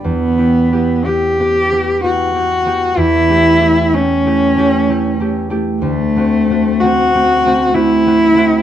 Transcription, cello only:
X:1
M:3/4
L:1/8
Q:1/4=63
K:Em
V:1 name="Cello"
B,2 G2 F2 | E2 ^C3 z | A,2 F2 E2 |]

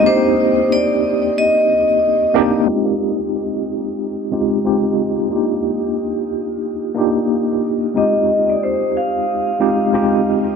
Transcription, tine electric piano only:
X:1
M:4/4
L:1/8
Q:"Swing 16ths" 1/4=91
K:Fdor
V:1 name="Tine electric piano"
[B,CDEG]4- [B,CDEG] z2 [B,CDEG] | [A,CEFG]4- [A,CEFG] [A,CEFG] [A,CEFG]2 | [B,DEFG]4- [B,DEFG] [B,DEFG]3 | [A,CEFG]4- [A,CEFG] [A,CEFG] [A,CEFG]2 |]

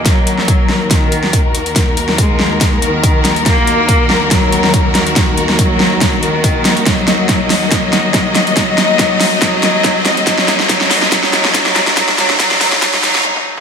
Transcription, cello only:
X:1
M:4/4
L:1/8
Q:"Swing 16ths" 1/4=141
K:Ebm
V:1 name="Cello" clef=bass
G,4 E,3 z | z2 A,3 E,3 | B,4 G,3 z | z2 G,3 E,3 |
G,4 G,4 | G,4 G,4 | G,2 G,2 G,2 G,2 | G, G, G, G, G, G, z2 |]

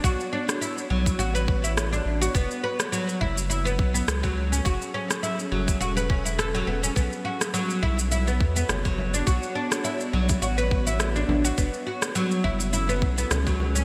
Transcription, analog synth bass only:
X:1
M:4/4
L:1/8
Q:"Swing 16ths" 1/4=104
K:Bdor
V:1 name="Analog synth bass" clef=bass
B,,, z2 B,,, A,,,3 A,,, | F,,, z2 F,,,2 B,,, C,,2 | F,,, z2 F,,, E,,,3 E,,, | B,,, z2 B,,,2 E,, F,,,2 |
B,,, z2 B,,, A,,,3 A,,, | F,,, z2 F,,,2 B,,, C,,2 |]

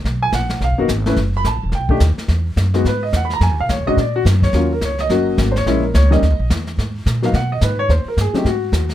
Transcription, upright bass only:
X:1
M:4/4
L:1/8
Q:"Swing" 1/4=214
K:Ebm
V:1 name="Upright bass" clef=bass
C,,2 B,,,2 (3C,, A,,, G,,, A,,,2 | G,,,2 (3=A,,, G,,, _F,,, =B,,,2 ^D,, z | =E,,2 ^F,,2 ^G,,2 E,,2 | (3F,, E,, C,, (3E,, C,, A,,, B,,2 G,,2 |
E,,2 D,,2 G,,,2 A,,,2 | B,,,2 D,,2 (3E,, D,, B,,, _F,,2 | [K:G#m] G,,2 A,,2 B,,2 G,,2 | D,, z =G,, z ^G,,2 D,,2 |]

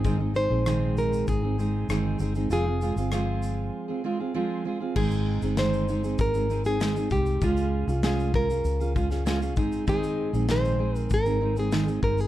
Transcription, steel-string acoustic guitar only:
X:1
M:4/4
L:1/16
Q:1/4=98
K:Ab
V:1 name="Steel-string acoustic guitar"
[A,,E,A,CEA] [A,CEA] [A,CEA] [A,CEA] [A,,E,A,CEA]4- [A,,E,A,CEA] [A,CEA] [A,CEA]2 [E,A,CEA]2 [A,CEA] [A,CEA] | [F,A,CFA] [CFA] [A,CFA] [CFA] [F,A,CFA]4- [F,A,CFA] [CFA] [A,CFA] [CFA] [F,A,CFA]2 [A,CFA] [CFA] | [A,,E,A,CEA]3 [A,CEA] [E,A,CEA]2 [A,CEA] [A,CEA]2 [A,CEA] [A,CEA] [A,CEA] [A,,E,A,CEA] [A,CEA] [A,CE]2 | [D,A,DFA]3 [DFA] [A,DFA]2 [A,DFA] [DFA]2 [DFA] [A,DFA] [DFA] [D,A,DFA] [DFA] [A,CEA]2 |
[A,,E,A,CEA]3 [A,CEA] [A,,E,A,CEA]2 [A,CEA]3 [A,CEA] [A,CEA] [A,CEA] [A,,E,A,CEA] [A,CEA] [A,CEA]2 |]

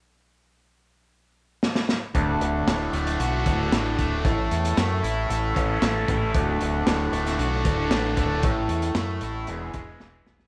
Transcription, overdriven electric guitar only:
X:1
M:4/4
L:1/8
Q:1/4=114
K:Dlyd
V:1 name="Overdriven electric guitar"
z8 | D,,2 A,, A, F D, A,, A, | A,,2 A, E A C A, E | D,,2 A,, A, F D, A,, A, |
A,,2 A, E E,, G, E, B, |]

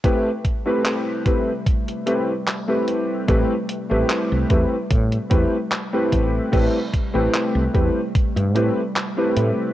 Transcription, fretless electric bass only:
X:1
M:4/4
L:1/16
Q:"Swing 16ths" 1/4=74
K:Am
V:1 name="Fretless electric bass" clef=bass
z16 | A,,, z2 A,,, z C,, E,, z A,, z E,, z3 A,,, z | A,,, z2 A,,, z C,, E,, z2 G,, A,, z3 A,, z |]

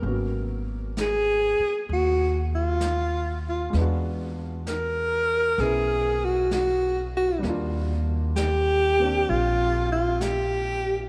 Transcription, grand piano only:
X:1
M:4/4
L:1/8
Q:"Swing" 1/4=65
K:Ablyd
V:1 name="Grand piano"
[_G,B,_C_D]8 | [^G,=B,D^F]4 [B,_D=E]4 | [G,B,DF]3 [B,CD]4- [B,CD] |]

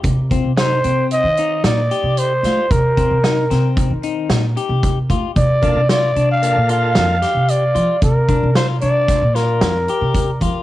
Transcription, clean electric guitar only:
X:1
M:5/4
L:1/8
Q:1/4=113
K:Cdor
V:1 name="Clean electric guitar"
z C E C2 E2 G2 F | z C E C2 E2 G2 F | z D F D2 F2 G2 F | z D F D2 F2 G2 F |]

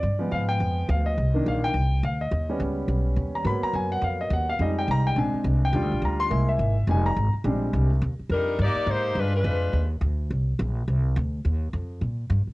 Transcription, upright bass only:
X:1
M:4/4
L:1/8
Q:"Swing" 1/4=210
K:Eb
V:1 name="Upright bass" clef=bass
G,,2 A,,2 F,,2 D,,2 | C,,2 B,,,2 C,,2 D,,2 | E,,2 _D,,2 _C,,2 E,,2 | A,, z _G,,2 F,,2 E,,2 |
F,,2 C,,2 B,,, z C,,2 | (3E,, D,, B,,, D,,2 C,,2 A,,,2 | F,,,2 A,,, z B,,,2 C,,2 | E,, z F,,2 G,, z A,,2 |
G,,2 F,,2 E,,2 D,,2 | C,,2 B,,,2 C,,2 D,,2 | E,,2 F,,2 B,,2 G,, z |]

